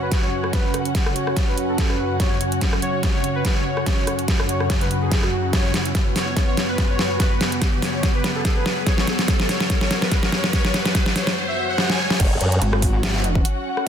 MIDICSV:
0, 0, Header, 1, 9, 480
1, 0, Start_track
1, 0, Tempo, 416667
1, 613, Time_signature, 4, 2, 24, 8
1, 15990, End_track
2, 0, Start_track
2, 0, Title_t, "Supersaw synth"
2, 0, Program_c, 0, 81
2, 23, Note_on_c, 0, 71, 89
2, 192, Note_off_c, 0, 71, 0
2, 264, Note_on_c, 0, 73, 95
2, 524, Note_off_c, 0, 73, 0
2, 611, Note_on_c, 0, 71, 100
2, 876, Note_off_c, 0, 71, 0
2, 1333, Note_on_c, 0, 73, 96
2, 1597, Note_off_c, 0, 73, 0
2, 1703, Note_on_c, 0, 71, 91
2, 1872, Note_off_c, 0, 71, 0
2, 1944, Note_on_c, 0, 69, 87
2, 2113, Note_off_c, 0, 69, 0
2, 2182, Note_on_c, 0, 71, 91
2, 2443, Note_off_c, 0, 71, 0
2, 2530, Note_on_c, 0, 73, 102
2, 2795, Note_off_c, 0, 73, 0
2, 3252, Note_on_c, 0, 73, 98
2, 3517, Note_off_c, 0, 73, 0
2, 3624, Note_on_c, 0, 73, 90
2, 3793, Note_off_c, 0, 73, 0
2, 3864, Note_on_c, 0, 71, 90
2, 4033, Note_off_c, 0, 71, 0
2, 4103, Note_on_c, 0, 73, 96
2, 4364, Note_off_c, 0, 73, 0
2, 4454, Note_on_c, 0, 73, 99
2, 4717, Note_off_c, 0, 73, 0
2, 5173, Note_on_c, 0, 73, 96
2, 5437, Note_off_c, 0, 73, 0
2, 5544, Note_on_c, 0, 71, 90
2, 5713, Note_off_c, 0, 71, 0
2, 5784, Note_on_c, 0, 68, 89
2, 5953, Note_off_c, 0, 68, 0
2, 6023, Note_on_c, 0, 66, 96
2, 6283, Note_off_c, 0, 66, 0
2, 6372, Note_on_c, 0, 73, 104
2, 6636, Note_off_c, 0, 73, 0
2, 7093, Note_on_c, 0, 73, 96
2, 7357, Note_off_c, 0, 73, 0
2, 7463, Note_on_c, 0, 73, 90
2, 7632, Note_off_c, 0, 73, 0
2, 7703, Note_on_c, 0, 71, 88
2, 7872, Note_off_c, 0, 71, 0
2, 7945, Note_on_c, 0, 73, 98
2, 8204, Note_off_c, 0, 73, 0
2, 8293, Note_on_c, 0, 71, 104
2, 8557, Note_off_c, 0, 71, 0
2, 9013, Note_on_c, 0, 73, 98
2, 9277, Note_off_c, 0, 73, 0
2, 9384, Note_on_c, 0, 71, 94
2, 9553, Note_off_c, 0, 71, 0
2, 9624, Note_on_c, 0, 69, 91
2, 9793, Note_off_c, 0, 69, 0
2, 9864, Note_on_c, 0, 71, 100
2, 10124, Note_off_c, 0, 71, 0
2, 10213, Note_on_c, 0, 73, 107
2, 10477, Note_off_c, 0, 73, 0
2, 10932, Note_on_c, 0, 73, 101
2, 11197, Note_off_c, 0, 73, 0
2, 11304, Note_on_c, 0, 73, 92
2, 11473, Note_off_c, 0, 73, 0
2, 11544, Note_on_c, 0, 71, 91
2, 11713, Note_off_c, 0, 71, 0
2, 11783, Note_on_c, 0, 73, 98
2, 12044, Note_off_c, 0, 73, 0
2, 12134, Note_on_c, 0, 73, 105
2, 12398, Note_off_c, 0, 73, 0
2, 12854, Note_on_c, 0, 73, 98
2, 13118, Note_off_c, 0, 73, 0
2, 13225, Note_on_c, 0, 76, 92
2, 13393, Note_off_c, 0, 76, 0
2, 13466, Note_on_c, 0, 78, 89
2, 13634, Note_off_c, 0, 78, 0
2, 13707, Note_on_c, 0, 80, 95
2, 13966, Note_off_c, 0, 80, 0
2, 15990, End_track
3, 0, Start_track
3, 0, Title_t, "String section"
3, 0, Program_c, 1, 48
3, 0, Note_on_c, 1, 61, 73
3, 0, Note_on_c, 1, 66, 69
3, 0, Note_on_c, 1, 78, 76
3, 13093, Note_off_c, 1, 61, 0
3, 13094, Note_off_c, 1, 66, 0
3, 13094, Note_off_c, 1, 78, 0
3, 14053, Note_on_c, 1, 61, 73
3, 14230, Note_on_c, 1, 66, 80
3, 14259, Note_on_c, 1, 78, 80
3, 15990, Note_off_c, 1, 61, 0
3, 15990, Note_off_c, 1, 66, 0
3, 15990, Note_off_c, 1, 78, 0
3, 15990, End_track
4, 0, Start_track
4, 0, Title_t, "Ambient pad"
4, 0, Program_c, 2, 92
4, 0, Note_on_c, 2, 42, 79
4, 0, Note_on_c, 2, 49, 73
4, 0, Note_on_c, 2, 61, 71
4, 0, Note_on_c, 2, 66, 91
4, 6328, Note_off_c, 2, 61, 0
4, 6354, Note_off_c, 2, 66, 0
4, 6374, Note_on_c, 2, 59, 75
4, 6374, Note_on_c, 2, 71, 88
4, 13048, Note_off_c, 2, 42, 0
4, 13048, Note_off_c, 2, 49, 0
4, 13048, Note_off_c, 2, 59, 0
4, 13074, Note_off_c, 2, 71, 0
4, 14053, Note_on_c, 2, 54, 78
4, 14053, Note_on_c, 2, 61, 75
4, 14053, Note_on_c, 2, 73, 78
4, 14054, Note_on_c, 2, 78, 93
4, 15990, Note_off_c, 2, 54, 0
4, 15990, Note_off_c, 2, 61, 0
4, 15990, Note_off_c, 2, 73, 0
4, 15990, Note_off_c, 2, 78, 0
4, 15990, End_track
5, 0, Start_track
5, 0, Title_t, "Wobble bass"
5, 0, Program_c, 3, 39
5, 14053, Note_on_c, 3, 30, 97
5, 14276, Note_off_c, 3, 30, 0
5, 14294, Note_on_c, 3, 42, 94
5, 14516, Note_off_c, 3, 42, 0
5, 15990, End_track
6, 0, Start_track
6, 0, Title_t, "Wobble bass"
6, 0, Program_c, 4, 39
6, 14534, Note_on_c, 4, 32, 98
6, 15476, Note_off_c, 4, 32, 0
6, 15990, End_track
7, 0, Start_track
7, 0, Title_t, "Riser"
7, 0, Program_c, 5, 103
7, 0, Note_on_c, 5, 60, 76
7, 14053, Note_off_c, 5, 60, 0
7, 15990, End_track
8, 0, Start_track
8, 0, Title_t, "Swell"
8, 0, Program_c, 6, 103
8, 13093, Note_on_c, 6, 60, 81
8, 14053, Note_off_c, 6, 60, 0
8, 15990, End_track
9, 0, Start_track
9, 0, Title_t, "Drums"
9, 132, Note_on_c, 9, 36, 99
9, 134, Note_on_c, 9, 38, 52
9, 134, Note_on_c, 9, 42, 83
9, 247, Note_off_c, 9, 36, 0
9, 249, Note_off_c, 9, 38, 0
9, 249, Note_off_c, 9, 42, 0
9, 505, Note_on_c, 9, 37, 48
9, 612, Note_on_c, 9, 36, 97
9, 613, Note_on_c, 9, 38, 50
9, 613, Note_on_c, 9, 42, 82
9, 620, Note_off_c, 9, 37, 0
9, 727, Note_off_c, 9, 36, 0
9, 728, Note_off_c, 9, 38, 0
9, 728, Note_off_c, 9, 42, 0
9, 853, Note_on_c, 9, 37, 55
9, 853, Note_on_c, 9, 42, 53
9, 968, Note_off_c, 9, 37, 0
9, 968, Note_off_c, 9, 42, 0
9, 984, Note_on_c, 9, 42, 37
9, 1092, Note_off_c, 9, 42, 0
9, 1092, Note_on_c, 9, 36, 95
9, 1092, Note_on_c, 9, 38, 54
9, 1092, Note_on_c, 9, 42, 81
9, 1207, Note_off_c, 9, 36, 0
9, 1208, Note_off_c, 9, 38, 0
9, 1208, Note_off_c, 9, 42, 0
9, 1225, Note_on_c, 9, 37, 75
9, 1334, Note_on_c, 9, 42, 55
9, 1340, Note_off_c, 9, 37, 0
9, 1449, Note_off_c, 9, 42, 0
9, 1466, Note_on_c, 9, 37, 56
9, 1572, Note_on_c, 9, 36, 91
9, 1574, Note_on_c, 9, 38, 56
9, 1574, Note_on_c, 9, 42, 85
9, 1581, Note_off_c, 9, 37, 0
9, 1687, Note_off_c, 9, 36, 0
9, 1689, Note_off_c, 9, 38, 0
9, 1689, Note_off_c, 9, 42, 0
9, 1815, Note_on_c, 9, 42, 54
9, 1930, Note_off_c, 9, 42, 0
9, 2052, Note_on_c, 9, 36, 96
9, 2054, Note_on_c, 9, 38, 59
9, 2054, Note_on_c, 9, 42, 83
9, 2167, Note_off_c, 9, 36, 0
9, 2169, Note_off_c, 9, 38, 0
9, 2169, Note_off_c, 9, 42, 0
9, 2184, Note_on_c, 9, 37, 50
9, 2299, Note_off_c, 9, 37, 0
9, 2532, Note_on_c, 9, 36, 97
9, 2533, Note_on_c, 9, 38, 59
9, 2533, Note_on_c, 9, 42, 81
9, 2647, Note_off_c, 9, 36, 0
9, 2648, Note_off_c, 9, 38, 0
9, 2648, Note_off_c, 9, 42, 0
9, 2773, Note_on_c, 9, 42, 53
9, 2888, Note_off_c, 9, 42, 0
9, 2903, Note_on_c, 9, 42, 36
9, 3012, Note_off_c, 9, 42, 0
9, 3012, Note_on_c, 9, 36, 91
9, 3012, Note_on_c, 9, 38, 61
9, 3012, Note_on_c, 9, 42, 80
9, 3127, Note_off_c, 9, 36, 0
9, 3127, Note_off_c, 9, 38, 0
9, 3127, Note_off_c, 9, 42, 0
9, 3143, Note_on_c, 9, 37, 79
9, 3253, Note_on_c, 9, 42, 53
9, 3258, Note_off_c, 9, 37, 0
9, 3368, Note_off_c, 9, 42, 0
9, 3492, Note_on_c, 9, 36, 95
9, 3492, Note_on_c, 9, 38, 62
9, 3492, Note_on_c, 9, 42, 84
9, 3607, Note_off_c, 9, 36, 0
9, 3607, Note_off_c, 9, 38, 0
9, 3607, Note_off_c, 9, 42, 0
9, 3732, Note_on_c, 9, 42, 51
9, 3847, Note_off_c, 9, 42, 0
9, 3971, Note_on_c, 9, 38, 66
9, 3971, Note_on_c, 9, 42, 82
9, 3972, Note_on_c, 9, 36, 95
9, 4087, Note_off_c, 9, 36, 0
9, 4087, Note_off_c, 9, 38, 0
9, 4087, Note_off_c, 9, 42, 0
9, 4344, Note_on_c, 9, 37, 51
9, 4451, Note_on_c, 9, 38, 68
9, 4451, Note_on_c, 9, 42, 78
9, 4452, Note_on_c, 9, 36, 97
9, 4459, Note_off_c, 9, 37, 0
9, 4567, Note_off_c, 9, 36, 0
9, 4567, Note_off_c, 9, 38, 0
9, 4567, Note_off_c, 9, 42, 0
9, 4692, Note_on_c, 9, 37, 62
9, 4692, Note_on_c, 9, 42, 53
9, 4807, Note_off_c, 9, 37, 0
9, 4807, Note_off_c, 9, 42, 0
9, 4824, Note_on_c, 9, 42, 35
9, 4932, Note_on_c, 9, 36, 94
9, 4933, Note_off_c, 9, 42, 0
9, 4933, Note_on_c, 9, 38, 65
9, 4933, Note_on_c, 9, 42, 77
9, 5047, Note_off_c, 9, 36, 0
9, 5048, Note_off_c, 9, 38, 0
9, 5048, Note_off_c, 9, 42, 0
9, 5064, Note_on_c, 9, 37, 82
9, 5173, Note_on_c, 9, 42, 51
9, 5180, Note_off_c, 9, 37, 0
9, 5288, Note_off_c, 9, 42, 0
9, 5304, Note_on_c, 9, 37, 61
9, 5412, Note_on_c, 9, 36, 93
9, 5413, Note_on_c, 9, 38, 73
9, 5413, Note_on_c, 9, 42, 78
9, 5420, Note_off_c, 9, 37, 0
9, 5527, Note_off_c, 9, 36, 0
9, 5528, Note_off_c, 9, 38, 0
9, 5528, Note_off_c, 9, 42, 0
9, 5545, Note_on_c, 9, 42, 36
9, 5654, Note_off_c, 9, 42, 0
9, 5654, Note_on_c, 9, 42, 50
9, 5769, Note_off_c, 9, 42, 0
9, 5892, Note_on_c, 9, 36, 99
9, 5893, Note_on_c, 9, 38, 72
9, 5893, Note_on_c, 9, 42, 78
9, 6007, Note_off_c, 9, 36, 0
9, 6008, Note_off_c, 9, 38, 0
9, 6008, Note_off_c, 9, 42, 0
9, 6024, Note_on_c, 9, 37, 55
9, 6139, Note_off_c, 9, 37, 0
9, 6372, Note_on_c, 9, 36, 99
9, 6373, Note_on_c, 9, 38, 76
9, 6373, Note_on_c, 9, 42, 75
9, 6487, Note_off_c, 9, 36, 0
9, 6488, Note_off_c, 9, 38, 0
9, 6488, Note_off_c, 9, 42, 0
9, 6613, Note_on_c, 9, 38, 77
9, 6613, Note_on_c, 9, 42, 52
9, 6728, Note_off_c, 9, 38, 0
9, 6728, Note_off_c, 9, 42, 0
9, 6745, Note_on_c, 9, 42, 34
9, 6852, Note_on_c, 9, 36, 94
9, 6853, Note_off_c, 9, 42, 0
9, 6853, Note_on_c, 9, 38, 76
9, 6853, Note_on_c, 9, 42, 78
9, 6968, Note_off_c, 9, 36, 0
9, 6969, Note_off_c, 9, 38, 0
9, 6969, Note_off_c, 9, 42, 0
9, 7094, Note_on_c, 9, 38, 77
9, 7094, Note_on_c, 9, 46, 88
9, 7209, Note_off_c, 9, 38, 0
9, 7209, Note_off_c, 9, 46, 0
9, 7332, Note_on_c, 9, 36, 97
9, 7333, Note_on_c, 9, 38, 82
9, 7333, Note_on_c, 9, 42, 77
9, 7448, Note_off_c, 9, 36, 0
9, 7448, Note_off_c, 9, 38, 0
9, 7448, Note_off_c, 9, 42, 0
9, 7573, Note_on_c, 9, 38, 79
9, 7573, Note_on_c, 9, 42, 49
9, 7688, Note_off_c, 9, 38, 0
9, 7688, Note_off_c, 9, 42, 0
9, 7812, Note_on_c, 9, 36, 97
9, 7813, Note_on_c, 9, 38, 82
9, 7813, Note_on_c, 9, 42, 77
9, 7927, Note_off_c, 9, 36, 0
9, 7928, Note_off_c, 9, 38, 0
9, 7928, Note_off_c, 9, 42, 0
9, 8053, Note_on_c, 9, 38, 80
9, 8168, Note_off_c, 9, 38, 0
9, 8292, Note_on_c, 9, 36, 99
9, 8294, Note_on_c, 9, 38, 82
9, 8294, Note_on_c, 9, 42, 77
9, 8407, Note_off_c, 9, 36, 0
9, 8409, Note_off_c, 9, 38, 0
9, 8409, Note_off_c, 9, 42, 0
9, 8534, Note_on_c, 9, 38, 84
9, 8534, Note_on_c, 9, 42, 50
9, 8649, Note_off_c, 9, 38, 0
9, 8649, Note_off_c, 9, 42, 0
9, 8665, Note_on_c, 9, 42, 36
9, 8772, Note_on_c, 9, 36, 96
9, 8774, Note_off_c, 9, 42, 0
9, 8774, Note_on_c, 9, 38, 87
9, 8774, Note_on_c, 9, 42, 76
9, 8887, Note_off_c, 9, 36, 0
9, 8889, Note_off_c, 9, 38, 0
9, 8889, Note_off_c, 9, 42, 0
9, 9013, Note_on_c, 9, 38, 89
9, 9013, Note_on_c, 9, 46, 91
9, 9129, Note_off_c, 9, 38, 0
9, 9129, Note_off_c, 9, 46, 0
9, 9252, Note_on_c, 9, 36, 98
9, 9254, Note_on_c, 9, 38, 92
9, 9254, Note_on_c, 9, 42, 78
9, 9367, Note_off_c, 9, 36, 0
9, 9370, Note_off_c, 9, 38, 0
9, 9370, Note_off_c, 9, 42, 0
9, 9494, Note_on_c, 9, 38, 87
9, 9494, Note_on_c, 9, 42, 51
9, 9609, Note_off_c, 9, 38, 0
9, 9609, Note_off_c, 9, 42, 0
9, 9732, Note_on_c, 9, 36, 98
9, 9734, Note_on_c, 9, 38, 93
9, 9734, Note_on_c, 9, 42, 76
9, 9847, Note_off_c, 9, 36, 0
9, 9849, Note_off_c, 9, 38, 0
9, 9849, Note_off_c, 9, 42, 0
9, 9974, Note_on_c, 9, 38, 93
9, 10089, Note_off_c, 9, 38, 0
9, 10212, Note_on_c, 9, 36, 99
9, 10213, Note_on_c, 9, 38, 92
9, 10213, Note_on_c, 9, 42, 80
9, 10327, Note_off_c, 9, 36, 0
9, 10328, Note_off_c, 9, 38, 0
9, 10328, Note_off_c, 9, 42, 0
9, 10345, Note_on_c, 9, 38, 81
9, 10453, Note_off_c, 9, 38, 0
9, 10453, Note_on_c, 9, 38, 91
9, 10453, Note_on_c, 9, 42, 53
9, 10569, Note_off_c, 9, 38, 0
9, 10569, Note_off_c, 9, 42, 0
9, 10585, Note_on_c, 9, 38, 81
9, 10585, Note_on_c, 9, 42, 36
9, 10693, Note_on_c, 9, 36, 97
9, 10694, Note_off_c, 9, 38, 0
9, 10694, Note_off_c, 9, 42, 0
9, 10694, Note_on_c, 9, 38, 95
9, 10694, Note_on_c, 9, 42, 78
9, 10808, Note_off_c, 9, 36, 0
9, 10809, Note_off_c, 9, 38, 0
9, 10809, Note_off_c, 9, 42, 0
9, 10825, Note_on_c, 9, 38, 89
9, 10934, Note_off_c, 9, 38, 0
9, 10934, Note_on_c, 9, 38, 99
9, 10934, Note_on_c, 9, 46, 95
9, 11049, Note_off_c, 9, 38, 0
9, 11049, Note_off_c, 9, 46, 0
9, 11065, Note_on_c, 9, 38, 86
9, 11173, Note_off_c, 9, 38, 0
9, 11173, Note_on_c, 9, 36, 99
9, 11173, Note_on_c, 9, 38, 101
9, 11173, Note_on_c, 9, 42, 82
9, 11288, Note_off_c, 9, 36, 0
9, 11289, Note_off_c, 9, 38, 0
9, 11289, Note_off_c, 9, 42, 0
9, 11305, Note_on_c, 9, 38, 88
9, 11413, Note_off_c, 9, 38, 0
9, 11413, Note_on_c, 9, 38, 100
9, 11413, Note_on_c, 9, 42, 52
9, 11528, Note_off_c, 9, 38, 0
9, 11528, Note_off_c, 9, 42, 0
9, 11545, Note_on_c, 9, 38, 87
9, 11652, Note_on_c, 9, 36, 99
9, 11653, Note_off_c, 9, 38, 0
9, 11653, Note_on_c, 9, 38, 100
9, 11653, Note_on_c, 9, 42, 78
9, 11768, Note_off_c, 9, 36, 0
9, 11768, Note_off_c, 9, 38, 0
9, 11768, Note_off_c, 9, 42, 0
9, 11784, Note_on_c, 9, 38, 95
9, 11893, Note_off_c, 9, 38, 0
9, 11893, Note_on_c, 9, 38, 97
9, 12009, Note_off_c, 9, 38, 0
9, 12025, Note_on_c, 9, 38, 89
9, 12133, Note_on_c, 9, 36, 101
9, 12134, Note_off_c, 9, 38, 0
9, 12134, Note_on_c, 9, 38, 104
9, 12134, Note_on_c, 9, 42, 79
9, 12248, Note_off_c, 9, 36, 0
9, 12249, Note_off_c, 9, 38, 0
9, 12249, Note_off_c, 9, 42, 0
9, 12265, Note_on_c, 9, 38, 92
9, 12374, Note_off_c, 9, 38, 0
9, 12374, Note_on_c, 9, 38, 105
9, 12374, Note_on_c, 9, 42, 54
9, 12489, Note_off_c, 9, 38, 0
9, 12489, Note_off_c, 9, 42, 0
9, 12505, Note_on_c, 9, 38, 89
9, 12505, Note_on_c, 9, 42, 38
9, 12612, Note_on_c, 9, 36, 95
9, 12613, Note_off_c, 9, 38, 0
9, 12613, Note_off_c, 9, 42, 0
9, 12613, Note_on_c, 9, 38, 105
9, 12613, Note_on_c, 9, 42, 81
9, 12728, Note_off_c, 9, 36, 0
9, 12728, Note_off_c, 9, 38, 0
9, 12728, Note_off_c, 9, 42, 0
9, 12744, Note_on_c, 9, 38, 97
9, 12853, Note_off_c, 9, 38, 0
9, 12853, Note_on_c, 9, 38, 108
9, 12853, Note_on_c, 9, 46, 101
9, 12968, Note_off_c, 9, 38, 0
9, 12968, Note_off_c, 9, 46, 0
9, 12984, Note_on_c, 9, 38, 93
9, 13099, Note_off_c, 9, 38, 0
9, 13573, Note_on_c, 9, 38, 63
9, 13688, Note_off_c, 9, 38, 0
9, 13705, Note_on_c, 9, 38, 67
9, 13820, Note_off_c, 9, 38, 0
9, 13944, Note_on_c, 9, 38, 82
9, 14053, Note_on_c, 9, 36, 124
9, 14053, Note_on_c, 9, 42, 83
9, 14053, Note_on_c, 9, 49, 101
9, 14059, Note_off_c, 9, 38, 0
9, 14168, Note_off_c, 9, 36, 0
9, 14169, Note_off_c, 9, 42, 0
9, 14169, Note_off_c, 9, 49, 0
9, 14293, Note_on_c, 9, 42, 55
9, 14408, Note_off_c, 9, 42, 0
9, 14425, Note_on_c, 9, 42, 39
9, 14534, Note_off_c, 9, 42, 0
9, 14534, Note_on_c, 9, 42, 83
9, 14649, Note_off_c, 9, 42, 0
9, 14665, Note_on_c, 9, 37, 79
9, 14773, Note_on_c, 9, 36, 65
9, 14773, Note_on_c, 9, 46, 101
9, 14780, Note_off_c, 9, 37, 0
9, 14888, Note_off_c, 9, 36, 0
9, 14888, Note_off_c, 9, 46, 0
9, 15014, Note_on_c, 9, 38, 124
9, 15014, Note_on_c, 9, 42, 87
9, 15129, Note_off_c, 9, 38, 0
9, 15129, Note_off_c, 9, 42, 0
9, 15254, Note_on_c, 9, 42, 55
9, 15369, Note_off_c, 9, 42, 0
9, 15384, Note_on_c, 9, 36, 105
9, 15494, Note_on_c, 9, 42, 85
9, 15499, Note_off_c, 9, 36, 0
9, 15609, Note_off_c, 9, 42, 0
9, 15865, Note_on_c, 9, 37, 50
9, 15981, Note_off_c, 9, 37, 0
9, 15990, End_track
0, 0, End_of_file